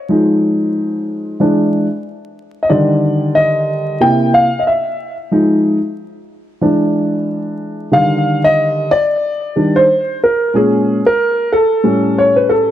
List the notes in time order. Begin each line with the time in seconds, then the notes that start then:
0.09 F3 G#3 D#4
1.40 E3 G#3 D4
2.63 D#5
2.70 D3 D#3 G3 D5
3.35 D#5
4.00 C3 A#3 E4 G5
4.34 F5
4.59 D#5
4.67 E5
5.31 F3 G#3 D#4
6.61 E3 G#3 D4
7.91 D3 D#3 G3 F5
8.44 D#5
8.91 D5
9.56 D#3 G3 D4
9.76 C5
10.24 A#4
10.54 A#2 G#3 C#4 G#4
11.06 A#4
11.52 A4
11.84 A2 G3 C#4
12.18 C#5
12.36 B4
12.49 A4